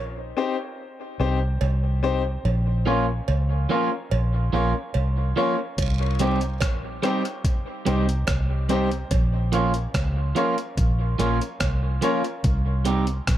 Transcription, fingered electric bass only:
0, 0, Header, 1, 2, 480
1, 0, Start_track
1, 0, Tempo, 833218
1, 1410, Time_signature, 4, 2, 24, 8
1, 7706, End_track
2, 0, Start_track
2, 0, Title_t, "Fingered electric bass"
2, 0, Program_c, 0, 33
2, 0, Note_on_c, 0, 34, 100
2, 186, Note_off_c, 0, 34, 0
2, 690, Note_on_c, 0, 36, 81
2, 905, Note_off_c, 0, 36, 0
2, 930, Note_on_c, 0, 36, 99
2, 1361, Note_off_c, 0, 36, 0
2, 1412, Note_on_c, 0, 34, 108
2, 1841, Note_off_c, 0, 34, 0
2, 1892, Note_on_c, 0, 37, 86
2, 2106, Note_off_c, 0, 37, 0
2, 2372, Note_on_c, 0, 34, 97
2, 2586, Note_off_c, 0, 34, 0
2, 2610, Note_on_c, 0, 34, 91
2, 2722, Note_off_c, 0, 34, 0
2, 2852, Note_on_c, 0, 36, 83
2, 3066, Note_off_c, 0, 36, 0
2, 3333, Note_on_c, 0, 36, 117
2, 3813, Note_off_c, 0, 36, 0
2, 3813, Note_on_c, 0, 34, 97
2, 4027, Note_off_c, 0, 34, 0
2, 4535, Note_on_c, 0, 36, 97
2, 4748, Note_off_c, 0, 36, 0
2, 4770, Note_on_c, 0, 36, 78
2, 5200, Note_off_c, 0, 36, 0
2, 5250, Note_on_c, 0, 34, 104
2, 5680, Note_off_c, 0, 34, 0
2, 5732, Note_on_c, 0, 37, 85
2, 5946, Note_off_c, 0, 37, 0
2, 6208, Note_on_c, 0, 34, 96
2, 6423, Note_off_c, 0, 34, 0
2, 6451, Note_on_c, 0, 34, 87
2, 6561, Note_off_c, 0, 34, 0
2, 6688, Note_on_c, 0, 36, 82
2, 6904, Note_off_c, 0, 36, 0
2, 7171, Note_on_c, 0, 36, 112
2, 7600, Note_off_c, 0, 36, 0
2, 7649, Note_on_c, 0, 34, 90
2, 7706, Note_off_c, 0, 34, 0
2, 7706, End_track
0, 0, End_of_file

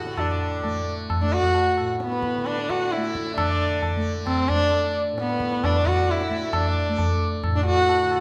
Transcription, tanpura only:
0, 0, Header, 1, 2, 480
1, 0, Start_track
1, 0, Tempo, 452830
1, 202, Time_signature, 7, 2, 24, 8
1, 8694, End_track
2, 0, Start_track
2, 0, Title_t, "Tanpura"
2, 0, Program_c, 0, 104
2, 0, Note_on_c, 0, 45, 59
2, 0, Note_on_c, 0, 57, 55
2, 44, Note_on_c, 0, 50, 62
2, 670, Note_off_c, 0, 57, 0
2, 670, Note_on_c, 0, 57, 60
2, 1293, Note_off_c, 0, 57, 0
2, 1293, Note_on_c, 0, 57, 58
2, 1896, Note_off_c, 0, 45, 0
2, 1900, Note_on_c, 0, 45, 58
2, 2512, Note_off_c, 0, 50, 0
2, 2517, Note_on_c, 0, 50, 65
2, 3143, Note_off_c, 0, 57, 0
2, 3143, Note_on_c, 0, 57, 56
2, 3567, Note_off_c, 0, 50, 0
2, 3567, Note_on_c, 0, 50, 66
2, 4200, Note_off_c, 0, 57, 0
2, 4200, Note_on_c, 0, 57, 61
2, 4810, Note_off_c, 0, 57, 0
2, 4810, Note_on_c, 0, 57, 59
2, 5431, Note_off_c, 0, 45, 0
2, 5436, Note_on_c, 0, 45, 58
2, 6038, Note_off_c, 0, 50, 0
2, 6038, Note_on_c, 0, 50, 65
2, 6665, Note_off_c, 0, 57, 0
2, 6670, Note_on_c, 0, 57, 56
2, 7301, Note_off_c, 0, 57, 0
2, 7301, Note_on_c, 0, 57, 59
2, 7907, Note_off_c, 0, 45, 0
2, 7911, Note_on_c, 0, 45, 66
2, 8510, Note_off_c, 0, 50, 0
2, 8514, Note_on_c, 0, 50, 54
2, 8694, Note_off_c, 0, 45, 0
2, 8694, Note_off_c, 0, 50, 0
2, 8694, Note_off_c, 0, 57, 0
2, 8694, End_track
0, 0, End_of_file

